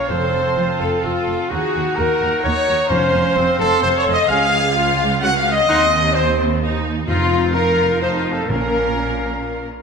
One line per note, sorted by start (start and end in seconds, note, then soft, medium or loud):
0.00 1.46 F5 medium
0.08 0.18 F1 medium
0.08 0.76 F2 loud
0.08 0.18 F2 medium
0.08 1.47 C4 medium
0.08 0.56 A4 medium
0.08 0.78 C5 loud
0.08 0.81 C5 medium
0.08 0.80 C5 medium
0.08 1.50 A5 medium
0.33 0.41 F1 medium
0.33 0.42 F2 medium
0.56 0.64 F1 medium
0.56 0.66 F2 medium
0.56 1.02 F4 medium
0.80 0.88 F1 medium
0.80 0.88 F2 medium
0.80 1.03 A4 medium
0.80 1.03 A4 loud
0.80 0.88 A4 medium
0.80 1.04 A4 medium
1.02 1.12 F1 medium
1.02 1.12 F2 medium
1.02 1.48 F4 loud
1.02 1.49 F4 medium
1.02 1.50 F4 medium
1.02 1.51 F4 medium
1.02 1.49 A4 medium
1.27 1.35 F1 medium
1.27 1.36 F2 medium
1.49 1.59 D#2 medium
1.49 2.87 D#4 medium
1.49 1.96 F#4 loud
1.49 1.97 F#4 medium
1.49 1.96 F#4 medium
1.49 1.96 F#4 loud
1.49 1.95 G#4 medium
1.49 2.90 F#5 medium
1.49 3.33 A#5 medium
1.74 1.82 D#2 medium
1.74 1.83 D#2 medium
1.95 2.05 D#2 medium
1.95 2.07 D#2 medium
1.95 2.43 F#4 medium
1.95 2.43 A#4 loud
1.95 2.43 A#4 medium
1.95 2.43 A#4 loud
1.95 2.45 A#4 loud
2.20 2.28 D#2 medium
2.20 2.29 D#2 medium
2.42 2.52 D#2 medium
2.42 2.53 D#2 medium
2.42 2.90 D#4 medium
2.42 2.88 C#5 loud
2.42 2.89 C#5 loud
2.67 2.75 D#2 medium
2.67 2.76 D#2 medium
2.89 2.98 F1 medium
2.89 2.98 F2 loud
2.89 3.33 F2 loud
2.89 3.35 C#4 medium
2.89 3.36 C#4 loud
2.89 3.58 C5 loud
2.89 3.59 C5 loud
2.89 4.28 F5 medium
3.13 3.21 F1 medium
3.13 3.21 F2 loud
3.36 3.45 F1 loud
3.36 3.44 F2 loud
3.36 4.14 C4 loud
3.36 3.83 C4 medium
3.36 4.27 C6 loud
3.58 3.68 F1 loud
3.58 3.68 F2 loud
3.58 3.82 A4 loud
3.58 3.83 A4 loud
3.58 3.82 A4 loud
3.81 3.92 F1 loud
3.81 3.91 F2 loud
3.81 4.28 A4 loud
3.81 3.98 C5 loud
3.81 3.90 C5 loud
3.81 3.98 C5 loud
3.97 4.03 C#5 loud
3.97 4.05 C#5 loud
3.97 4.13 C#5 loud
3.97 4.14 C#5 loud
4.06 4.14 F1 medium
4.06 4.15 F2 medium
4.12 4.28 D#5 loud
4.12 4.20 D#5 loud
4.12 4.29 D#5 loud
4.12 4.30 D#5 loud
4.27 5.64 C#2 loud
4.27 5.65 C#2 loud
4.27 4.47 C#4 loud
4.27 4.74 G#4 loud
4.27 5.21 F5 loud
4.27 4.45 F5 loud
4.27 5.20 F5 loud
4.27 4.93 F5 loud
4.27 5.06 F5 loud
4.27 4.51 G#5 loud
4.75 5.22 F4 loud
5.20 5.68 C#4 loud
5.20 5.30 F#4 loud
5.20 5.36 F#5 loud
5.20 5.37 F#5 loud
5.36 5.52 F5 loud
5.36 5.51 F5 loud
5.36 5.53 F5 loud
5.52 6.13 D#5 loud
5.52 6.16 D#5 loud
5.52 6.15 D#5 loud
5.52 6.14 D#5 loud
5.68 7.08 D#2 loud
5.68 7.09 D#2 loud
5.68 6.60 C4 loud
5.68 5.85 D#4 loud
5.68 5.85 F#5 loud
5.68 5.90 C6 loud
6.12 6.37 C5 loud
6.12 6.38 C5 loud
6.12 6.23 C5 loud
6.16 6.39 C5 loud
6.61 7.07 D#4 loud
7.07 8.46 F1 medium
7.07 7.74 F2 loud
7.07 8.47 F2 loud
7.07 7.54 C4 loud
7.07 7.52 D#4 medium
7.07 7.51 F4 loud
7.07 7.56 F4 loud
7.07 7.51 F5 medium
7.07 7.52 A#5 medium
7.54 8.01 D#4 medium
7.54 8.02 F4 loud
7.54 8.01 A#4 loud
7.54 8.02 A#4 loud
7.54 8.01 A#4 loud
7.54 8.01 F5 medium
7.54 8.01 A#5 medium
8.01 8.52 D#4 medium
8.01 8.49 D#4 medium
8.01 8.17 C5 loud
8.01 8.09 C5 loud
8.01 8.18 C5 loud
8.01 8.48 F5 medium
8.01 8.50 A5 medium
8.17 8.33 F4 medium
8.17 8.34 F4 medium
8.33 8.51 A4 medium
8.33 8.39 A4 medium
8.33 8.49 A4 loud
8.33 8.49 A4 medium
8.47 9.71 A#1 medium
8.47 9.17 A#2 loud
8.47 9.72 A#2 medium
8.47 9.66 C#4 medium
8.47 9.68 C#4 medium
8.47 9.64 A#4 loud
8.47 9.68 A#4 medium
8.47 9.66 A#4 medium
8.47 9.66 A#4 loud
8.47 9.66 F5 medium
8.47 9.68 A#5 medium